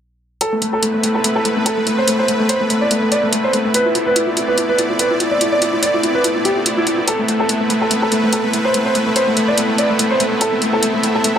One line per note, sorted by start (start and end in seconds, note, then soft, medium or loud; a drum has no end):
0.41 11.38 A3 medium
0.41 11.38 B3 medium
0.41 11.38 C4 medium
0.41 11.38 E4 medium
0.41 0.51 A4 medium
0.41 3.73 B4 medium
0.41 closed hi-hat medium
0.52 0.60 A3 medium
0.62 0.72 A3 medium
0.62 closed hi-hat soft
0.73 0.82 A4 medium
0.83 0.92 A3 medium
0.83 closed hi-hat medium
0.94 1.02 A3 medium
1.03 1.14 A3 medium
1.03 closed hi-hat soft
1.15 1.23 A4 medium
1.24 1.34 A3 medium
1.24 closed hi-hat medium
1.36 1.44 A4 medium
1.45 1.55 A3 medium
1.45 closed hi-hat soft
1.56 1.65 A3 medium
1.66 1.76 A4 medium
1.66 closed hi-hat medium
1.77 1.85 A3 medium
1.87 1.97 A3 medium
1.87 closed hi-hat soft
1.98 2.07 C5 medium
2.08 2.18 A3 medium
2.08 closed hi-hat medium
2.19 2.27 C5 medium
2.28 2.38 A3 medium
2.28 closed hi-hat medium
2.40 2.48 A3 medium
2.49 2.59 C5 medium
2.49 closed hi-hat medium
2.61 2.69 A3 medium
2.70 2.80 A3 medium
2.70 closed hi-hat medium
2.81 2.90 D5 medium
2.91 3.01 A3 medium
2.91 closed hi-hat medium
3.02 3.11 A3 medium
3.12 3.22 D5 medium
3.12 closed hi-hat soft
3.23 3.31 A3 medium
3.33 3.43 A3 medium
3.33 closed hi-hat medium
3.44 3.52 C5 medium
3.53 3.63 A3 medium
3.53 closed hi-hat soft
3.65 3.73 A3 medium
3.74 3.84 B4 medium
3.74 7.07 D5 medium
3.74 closed hi-hat medium
3.85 3.93 E4 medium
3.95 4.05 E4 medium
3.95 closed hi-hat soft
4.06 4.15 B4 medium
4.16 4.26 E4 medium
4.16 closed hi-hat medium
4.27 4.35 E4 medium
4.37 4.47 E4 medium
4.37 closed hi-hat soft
4.48 4.57 B4 medium
4.58 4.68 E4 medium
4.58 closed hi-hat medium
4.69 4.77 B4 medium
4.78 4.88 E4 medium
4.78 closed hi-hat soft
4.90 4.98 E4 medium
4.99 5.09 B4 medium
4.99 closed hi-hat medium
5.11 5.19 E4 medium
5.20 5.30 E4 medium
5.20 closed hi-hat soft
5.31 5.40 D5 medium
5.41 5.51 E4 medium
5.41 closed hi-hat medium
5.52 5.61 D5 medium
5.62 5.72 E4 medium
5.62 closed hi-hat soft
5.73 5.82 E4 medium
5.83 5.93 D5 medium
5.83 closed hi-hat medium
5.94 6.02 E4 medium
6.03 6.14 E4 medium
6.03 closed hi-hat soft
6.15 6.23 B4 medium
6.24 6.34 E4 medium
6.24 closed hi-hat medium
6.36 6.44 E4 medium
6.45 6.55 G4 medium
6.45 closed hi-hat soft
6.56 6.64 E4 medium
6.66 6.76 E4 medium
6.66 closed hi-hat medium
6.77 6.85 E4 medium
6.87 6.97 E4 medium
6.87 closed hi-hat soft
6.98 7.07 E4 medium
7.08 7.18 A4 medium
7.08 10.40 B4 medium
7.08 closed hi-hat medium
7.19 7.27 A3 medium
7.28 7.39 A3 medium
7.28 closed hi-hat soft
7.40 7.48 A4 medium
7.49 7.59 A3 medium
7.49 closed hi-hat medium
7.61 7.69 A3 medium
7.70 7.80 A3 medium
7.70 closed hi-hat soft
7.81 7.90 A4 medium
7.91 8.01 A3 medium
7.91 closed hi-hat medium
8.02 8.11 A4 medium
8.12 8.22 A3 medium
8.12 closed hi-hat soft
8.23 8.32 A3 medium
8.33 8.43 A4 medium
8.33 closed hi-hat medium
8.44 8.52 A3 medium
8.53 8.64 A3 medium
8.53 closed hi-hat soft
8.65 8.73 C5 medium
8.74 8.84 A3 medium
8.74 closed hi-hat medium
8.86 8.94 C5 medium
8.95 9.05 A3 medium
8.95 closed hi-hat soft
9.06 9.15 A3 medium
9.16 9.26 C5 medium
9.16 closed hi-hat medium
9.27 9.35 A3 medium
9.37 9.47 A3 medium
9.37 closed hi-hat soft
9.48 9.57 D5 medium
9.58 9.67 A3 medium
9.58 closed hi-hat medium
9.69 9.77 A3 medium
9.78 9.89 D5 medium
9.78 closed hi-hat soft
9.90 9.98 A3 medium
9.99 10.09 A3 medium
9.99 closed hi-hat medium
10.11 10.19 C5 medium
10.20 10.30 A3 medium
10.20 closed hi-hat soft
10.32 10.40 A3 medium
10.41 10.51 A4 medium
10.41 11.38 E5 medium
10.41 closed hi-hat medium
10.52 10.60 A3 medium
10.62 10.72 A3 medium
10.62 closed hi-hat soft
10.73 10.82 A4 medium
10.83 10.92 A3 medium
10.83 closed hi-hat medium
10.94 11.02 A3 medium
11.03 11.14 A3 medium
11.03 closed hi-hat soft
11.15 11.23 A4 medium
11.24 11.34 A3 medium
11.24 closed hi-hat medium